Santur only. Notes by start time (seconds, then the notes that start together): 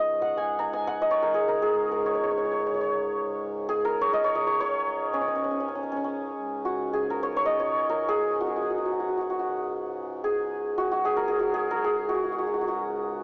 Already playing: C#5 D#5
0.22 F#5
0.37 G#5
0.59 A#5
0.73 G#5
0.87 F#5
1.01 D#5
1.11 C#5
1.22 A#4
1.34 G#4
1.48 A#4
1.62 G#4
1.91 A#4
2.06 C#5
2.15 C#5
2.24 C#5
2.31 C#5
2.38 C#5
2.45 C#5
2.51 C#5
2.60 C#5
2.66 C#5
2.74 C#5
2.81 C#5
3.69 G#4
3.85 A#4
4.01 C#5
4.13 D#5
4.24 C#5
4.35 D#5
4.47 C#5
4.61 C#5
5.14 C#4
5.21 C#4
5.28 C#4
5.36 C#4
5.44 C#4
5.51 C#4
5.60 C#4
5.68 C#4
5.75 C#4
5.83 C#4
5.92 C#4
5.97 C#4
6.04 C#4
6.65 F#4
6.94 G#4
7.10 A#4
7.23 C#5
7.37 C#5
7.46 D#5
7.60 C#5
7.89 A#4
8.08 G#4
8.41 F#4
8.46 F#4
8.56 F#4
8.62 F#4
8.70 F#4
8.78 F#4
8.85 F#4
8.92 F#4
9.00 F#4
9.08 F#4
9.17 F#4
9.30 F#4
9.39 F#4
10.24 G#4
10.78 F#4
10.92 F#4
11.05 G#4
11.17 A#4
11.28 G#4
11.39 F#4
11.54 G#4
11.71 A#4
11.84 G#4
12.09 F#4
12.15 F#4
12.24 F#4
12.32 F#4
12.38 F#4
12.47 F#4
12.54 F#4
12.61 F#4
12.68 F#4